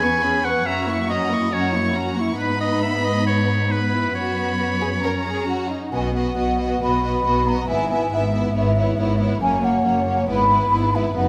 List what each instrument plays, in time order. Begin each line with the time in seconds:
Already playing: cello section E2, oboe G#5
0.01 viola section B3, violin section B4 C#6
0.22 viola section C#4, violin section G#4 B5
0.44 viola section B3, violin section B4 C#6, oboe F#5
0.66 cello section F#2, viola section C#4, violin section F#4 A#5, oboe E5
0.88 viola section A#3, violin section E4 C#6
1.08 viola section C#4, violin section F#4 A#5, oboe D#5
1.30 viola section A#3, violin section E4 C#6
1.51 viola section C#4, violin section F#4 A#5, oboe C#5
1.73 viola section A#3, violin section E4 C#6
1.95 viola section C#4, violin section F#4 A#5
2.17 viola section A#3, violin section E4 C#6
2.38 cello section G#2, viola section B3, violin section D#4 B5, oboe B4
2.60 oboe D#5
2.82 oboe E5
3.05 oboe D#5
3.27 oboe C#5
3.68 viola section B3, violin section D#4 B5, oboe B4
3.91 violin section E4
4.13 cello section F#2, viola section B3, violin section F#4 B5, oboe C#5
4.59 violin section F#4
4.81 violin section G#4
5.04 viola section C#4, violin section A#4 A#5
5.25 violin section G#4
5.48 violin section F#4
5.70 violin section D#4
5.92 double bass section B1, cello section B2, viola section B3, violin section F#4 D#5, flute section G#5
6.15 viola section B3, violin section F#4 D#5, flute section F#5
6.36 double bass section B1, cello section B2, viola section B3, violin section F#4 D#5
6.59 viola section B3, violin section F#4 D#5
6.81 double bass section B1, cello section B2, viola section B3, violin section F#4 D#5, flute section B5
7.04 viola section B3, violin section F#4 D#5
7.25 double bass section B1, cello section B2, viola section B3, violin section F#4 D#5
7.47 viola section B3, violin section F#4 D#5, flute section A#5
7.67 double bass section G#1, cello section G#2, viola section B3, violin section E4 E5, flute section G#5
7.90 viola section B3, violin section E4 E5
8.11 double bass section G#1, cello section G#2, viola section B3, violin section E4 E5, flute section E5
8.33 viola section B3, violin section E4 E5
8.54 double bass section G#1, cello section G#2, viola section B3, violin section E4 C#5
8.76 viola section B3, violin section E4 C#5
8.97 double bass section G#1, cello section G#2, viola section B3, violin section E4 C#5
9.19 viola section B3, violin section E4 C#5
9.40 double bass section F#1, cello section F#2, viola section A#3, violin section C#4 C#5, flute section G#5
9.62 viola section A#3, violin section C#4 C#5, flute section F#5
9.83 double bass section F#1, cello section F#2, viola section A#3, violin section C#4 C#5
10.06 viola section A#3, violin section C#4 C#5
10.28 double bass section G#1, cello section G#2, viola section B3, violin section E4 B4, flute section B5
10.49 viola section B3, violin section E4 B4
10.71 double bass section G#1, cello section G#2, viola section B3, violin section E4 B4
10.94 viola section B3, violin section E4 B4, flute section E5
11.14 double bass section F#1, cello section F#2, viola section B3, violin section D#4 B4, flute section F#5